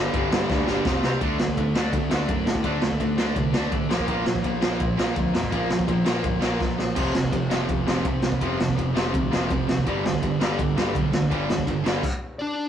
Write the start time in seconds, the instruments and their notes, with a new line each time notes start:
Already playing: overdriven electric guitar G2 D3 G3, distorted electric guitar G2 D3 G3
0.13 picked electric bass G1, overdriven electric guitar G2 D3 G3, kick, ride
0.31 overdriven electric guitar G2 D3 G3, picked electric bass G2, snare
0.49 picked electric bass D2, overdriven electric guitar G2 D3 G3, kick, snare
0.67 picked electric bass G1, overdriven electric guitar G2 D3 G3, snare
0.85 picked electric bass F1, overdriven electric guitar F2 C3 F3, kick, snare
1.03 picked electric bass C2, overdriven electric guitar C3 G3 C4, snare
1.20 picked electric bass D2, overdriven electric guitar D3 A3 D4, kick, ride
1.39 picked electric bass D2, overdriven electric guitar D3 A3, snare
1.48 kick
1.57 picked electric bass D2, overdriven electric guitar D3 A3, kick, ride
1.75 overdriven electric guitar D3 A3 D4, snare
1.93 picked electric bass D2, overdriven electric guitar D3 A3, kick, ride
2.10 picked electric bass D2, overdriven electric guitar D3 A3 D4, snare
2.28 picked electric bass F#2, overdriven electric guitar D3 A3, distorted electric guitar D4, kick, ride
2.45 picked electric bass A2, overdriven electric guitar D3 A3, snare
2.55 kick
2.63 picked electric bass D2, overdriven electric guitar D3 A3 D4, kick, ride
2.82 picked electric bass D2, overdriven electric guitar D3 A3, snare
2.91 kick
3.00 picked electric bass D2, overdriven electric guitar D3 A3, kick, ride
3.17 overdriven electric guitar D3 A3 D4, snare
3.36 picked electric bass C2, overdriven electric guitar D3 A3, kick, ride
3.53 picked electric bass D2, overdriven electric guitar D3 A3 D4, snare
3.71 picked electric bass A1, overdriven electric guitar D3 A3, distorted electric guitar D4, kick, ride
3.89 picked electric bass A#1, overdriven electric guitar A#2 F3 A#3, snare
3.99 kick
4.07 picked electric bass A#1, overdriven electric guitar A#2 F3 A#3, kick, ride
4.25 picked electric bass A#1, overdriven electric guitar A#2 F3, snare
4.35 kick
4.44 picked electric bass A#1, overdriven electric guitar A#2 F3, distorted electric guitar A#3, kick, ride
4.61 overdriven electric guitar A#2 F3 A#3, snare
4.80 picked electric bass A#1, overdriven electric guitar A#2 F3, kick, ride
4.98 picked electric bass A#1, overdriven electric guitar A#2 F3 A#3, snare
5.16 picked electric bass D2, overdriven electric guitar A#2 F3, kick, ride
5.34 picked electric bass F2, overdriven electric guitar A#2 F3, distorted electric guitar A#3, snare
5.43 kick
5.52 picked electric bass A#1, overdriven electric guitar A#2 F3 A#3, kick, ride
5.70 picked electric bass A#1, overdriven electric guitar A#2 F3, snare
5.79 kick
5.88 picked electric bass A#1, overdriven electric guitar A#2 F3, distorted electric guitar A#3, kick, ride
6.05 overdriven electric guitar A#2 F3 A#3, snare
6.24 picked electric bass G1, overdriven electric guitar A#2 F3, kick, ride
6.42 picked electric bass A#1, overdriven electric guitar A#2 F3 A#3, snare
6.60 picked electric bass A#1, overdriven electric guitar A#2 F3, kick, snare
6.79 overdriven electric guitar A#2 F3, snare
6.96 picked electric bass F1, overdriven electric guitar F2 C3 F3, kick, crash
7.14 picked electric bass F1, overdriven electric guitar F2 C3, snare
7.23 kick
7.31 picked electric bass F1, overdriven electric guitar F2 C3, kick, ride
7.50 overdriven electric guitar F2 C3 F3, snare
7.68 picked electric bass F1, overdriven electric guitar F2 C3, kick, ride
7.86 picked electric bass F1, overdriven electric guitar F2 C3 F3, snare
8.05 picked electric bass A1, overdriven electric guitar F2 C3, distorted electric guitar F3, kick, ride
8.22 picked electric bass C2, overdriven electric guitar F2 C3, snare
8.32 kick
8.41 picked electric bass F1, overdriven electric guitar F2 C3 F3, kick, ride
8.59 picked electric bass F1, overdriven electric guitar F2 C3, snare
8.69 kick
8.77 picked electric bass F1, overdriven electric guitar F2 C3, kick, ride
8.94 overdriven electric guitar F2 C3 F3, snare
9.14 picked electric bass D2, overdriven electric guitar F2 C3, kick, ride
9.31 picked electric bass F1, overdriven electric guitar F2 C3 F3, snare
9.50 picked electric bass F1, overdriven electric guitar F2 C3, distorted electric guitar F3, kick, ride
9.68 overdriven electric guitar F2 C3, snare
9.77 kick
9.86 picked electric bass G1, overdriven electric guitar G2 D3 G3, kick, ride
10.05 picked electric bass G1, overdriven electric guitar G2 D3, snare
10.14 kick
10.23 picked electric bass G1, overdriven electric guitar G2 D3, kick, ride
10.40 overdriven electric guitar G2 D3 G3, snare
10.59 picked electric bass G1, overdriven electric guitar G2 D3, kick, ride
10.76 picked electric bass G1, overdriven electric guitar G2 D3 G3, snare
10.95 picked electric bass B1, overdriven electric guitar G2 D3, distorted electric guitar G3, kick, ride
11.13 picked electric bass D2, overdriven electric guitar G2 D3, snare
11.22 kick
11.30 picked electric bass G1, overdriven electric guitar G2 D3 G3, kick, ride
11.49 picked electric bass G1, overdriven electric guitar G2 D3, snare
11.58 kick
11.67 picked electric bass G1, overdriven electric guitar G2 D3, kick, ride
11.85 overdriven electric guitar G2 D3 G3, snare
12.03 kick, crash
12.39 lead electric guitar D4 D5